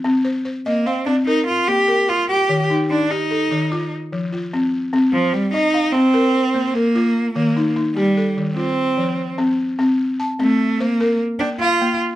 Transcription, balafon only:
\new Staff \with { instrumentName = "Balafon" } { \time 12/8 \key bes \major \tempo 4. = 99 << { r8 c''8 c''4 f''4 bes'4. bes'4. | r8 ees'8 ees'4 a'4 f'4. f'4. | r4 c''4 f''4 bes'4. bes'4. | r8 ees'8 ees'4 a'4 f'4. r4. |
r4 a''4. r8 bes'4. f''4. | } \\ { c'4 r8 ees''4 c'8 r4 bes4 f'4 | ees4 r8 g'4 ees8 r4 f4 c'4 | c'4 r8 ees''4 c'8 r4 bes4 f'4 | ees4 r8 g'4 ees8 r4 f4 c'4 |
c'4 r8 c'4 c''8 r4 bes4 bes4 | } >> }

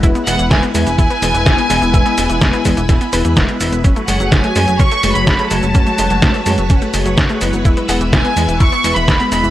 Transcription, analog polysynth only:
\new Staff \with { instrumentName = "Analog polysynth" } { \time 4/4 \key e \mixolydian \tempo 4 = 126 <gis b e' b'>8 <gis b e' b'>4 <gis b e' b'>16 r8. <gis b e' b'>8 r16 <gis b e' b'>16 <gis b e' b'>8~ | <gis b e' b'>8 <gis b e' b'>4 <gis b e' b'>16 r8. <gis b e' b'>16 <gis b e' b'>8. <gis b e' b'>8 | r8 <a fis' gis' cis''>4 <a fis' gis' cis''>16 r8. <a fis' gis' cis''>8 r16 <a fis' gis' cis''>16 <gis a fis' cis''>8~ | <gis a fis' cis''>8 <gis a fis' cis''>4 <a fis' gis' cis''>16 r8. <a fis' gis' cis''>8 r16 <a fis' gis' cis''>16 <gis b e' b'>8~ |
<gis b e' b'>8 <gis b e' b'>4 <gis b e' b'>16 r8. <gis b e' b'>8 r16 <gis b e' b'>16 <gis b e' b'>8 | }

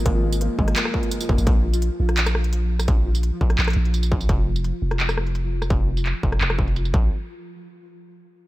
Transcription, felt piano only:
\new Staff \with { instrumentName = "Felt piano" } { \time 4/4 \key ges \lydian \tempo 4 = 170 bes8 bes8 bes8 aes8 bes8 bes'8 bes'8 bes8 | r1 | r1 | r1 |
r1 | r1 | }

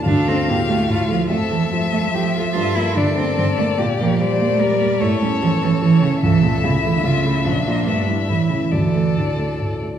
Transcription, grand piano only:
\new Staff \with { instrumentName = "Grand piano" } { \time 3/4 \key d \minor \tempo 4 = 146 d,8 a8 a,8 a8 a,8 a8 | f,8 a8 f8 a8 f8 a8 | g,8 bes8 d8 bes8 d8 bes8 | bes,8 bes8 g8 bes8 g8 bes8 |
a,8 cis'8 e8 cis'8 e8 cis'8 | cis,8 a8 cis8 a8 cis8 a8 | bes,,8 <d' f'>8 g,8 <d' e'>8 a,8 <cis' e'>8 | d,8 a8 a,8 a8 a,8 a8 | }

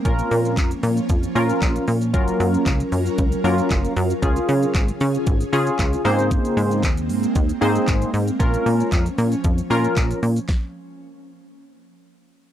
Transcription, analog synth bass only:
\new Staff \with { instrumentName = "Analog synth bass" } { \clef bass \time 4/4 \key bes \minor \tempo 4 = 115 bes,,8 bes,8 f,8 bes,8 f,8 bes,8 bes,,8 bes,8 | ges,,8 ges,8 des,8 ges,8 des,8 ges,8 ges,,8 ges,8 | des,8 des8 aes,,8 des8 aes,,8 des8 des,8 aes,8~ | aes,8 aes,8 ees,8 aes,8 ees,8 aes,8 aes,,8 aes,8 |
bes,,8 bes,8 f,8 bes,8 f,8 bes,8 bes,,8 bes,8 | r1 | }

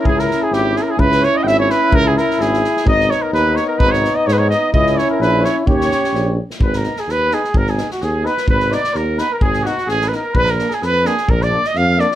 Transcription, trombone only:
\new Staff \with { instrumentName = "Trombone" } { \time 2/4 \tempo 4 = 128 e'2 | e'2~ | e'4. r8 | dis'2~ |
dis'2 | e'2 | g'4. r8 | r8 ees'8 r8 ees'8 |
r8 ees'8 r8 ees'8 | r8 ees'8 r8 ees'8 | r8 ees'8 r8 ees'8 | r8 d'8 r8 d'8 |
r8 d'8 r8 d'8 | }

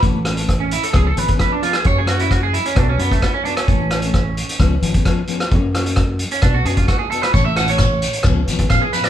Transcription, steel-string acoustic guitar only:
\new Staff \with { instrumentName = "Steel-string acoustic guitar" } { \time 4/4 \key a \major \tempo 4 = 132 <e a cis' a'>16 r16 <a cis' a'>16 <a cis' a'>16 r4 <eis b cis' gis'>16 r16 <eis b cis' gis'>16 <b cis' gis'>16 <eis b cis' gis'>16 r16 <eis b cis' gis'>16 r16 | <ais cis' fis'>16 r16 <ais cis' fis'>16 <cis' fis'>16 r4 <b d' fis'>16 r16 <b d' fis'>16 <d' fis'>16 <b d' fis'>16 r16 <b d' fis'>16 r16 | <e a cis' a'>16 r16 <e a cis' a'>16 <a cis' a'>16 r4 <eis b cis' gis'>16 r16 <eis b cis' gis'>16 <b cis' gis'>16 <eis b cis' gis'>16 r16 <eis b cis' gis'>16 r16 | <ais cis' fis'>16 r16 <ais cis' fis'>16 <cis' fis'>16 r4 <b d' fis'>16 r16 <b d' fis'>16 <d' fis'>16 <b d' fis'>16 r16 <b d' fis'>16 r16 |
<a cis' a'>16 r16 <e a cis' a'>16 <a cis' a'>16 r4 <eis b cis' gis'>16 r16 <eis b cis' gis'>16 <b cis' gis'>16 <eis b cis' gis'>16 r16 <eis b cis' gis'>16 r16 | }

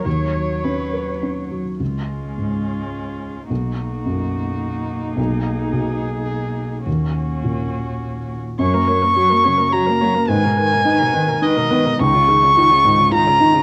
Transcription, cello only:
\new Staff \with { instrumentName = "Cello" } { \clef bass \time 3/4 \key des \mixolydian \tempo 4 = 106 fis2~ fis8. r16 | aes2. | ais2.~ | ais2. |
bes2~ bes8. r16 | ges16 bes16 ges16 bes16 ges16 bes16 ges16 bes16 ges16 bes16 ges16 bes16 | ees16 ces16 ees16 ces16 ees16 ces16 ees16 ces16 ees16 ces16 ees16 ces16 | ees16 des16 ees16 des16 ees16 des16 ees16 des16 ees16 des16 ees16 des16 | }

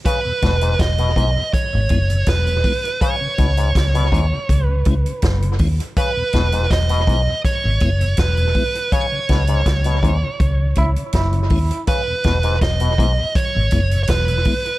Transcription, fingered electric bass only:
\new Staff \with { instrumentName = "Fingered electric bass" } { \clef bass \time 4/4 \key e \major \tempo 4 = 81 r8 e,,8 e,,8 b,,16 r8 gis,,16 fis,,8 e,,8 r8 | r8 cis,8 cis,8 dis,16 r16 cis,8 cis,16 r16 fis,,8 dis,16 r16 | r8 e,,8 e,,8 b,,16 r8 gis,,16 fis,,8 e,,8 r8 | r8 cis,8 cis,8 dis,16 r16 cis,8 cis,16 r16 fis,,8 dis,16 r16 |
r8 e,,8 e,,8 b,,16 r8 gis,,16 fis,,8 e,,8 r8 | }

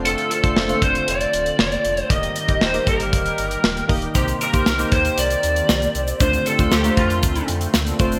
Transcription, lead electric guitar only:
\new Staff \with { instrumentName = "Lead electric guitar" } { \time 4/4 \key d \phrygian \tempo 4 = 117 a'8 a'4 c''8 d''4 d''4 | ees''4 c''8 bes'2 r8 | g'8 bes'4 c''8 d''2 | c''8 a'8 g'8 f'4 r4. | }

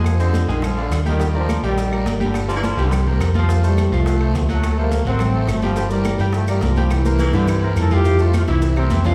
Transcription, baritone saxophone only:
\new Staff \with { instrumentName = "Baritone saxophone" } { \clef bass \time 4/4 \key f \major \tempo 4 = 210 r8 d4 ees8 \tuplet 3/2 { f4 d8~ } d16 r8. | r1 | r8 f16 e16 f8. d16 c4~ c16 r8. | r1 |
r1 | r1 | r4 e8 d8 c4 bes,4 | r1 | }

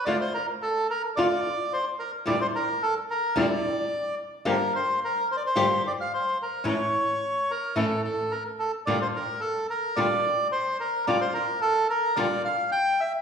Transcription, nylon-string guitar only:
\new Staff \with { instrumentName = "Nylon-string guitar" } { \clef bass \time 4/4 \key d \minor \tempo 4 = 109 <d a d' f'>8 r4. <d a d' f'>8 r4. | <e, bes, d g d' e'>8 r4. <e, bes, d g d' e'>8 r4. | <g, d f bes d' g'>8 r4. <g, d f bes d' g'>8 r4. | <a, e a cis' e'>8 r4. <a, e a cis' e'>8 r4. |
<bes, d g d' f'>8 r4. <bes, d g d' f'>8 r4. | <bes, d g d' f'>8 r4. <bes, d g d' f'>8 r4. | }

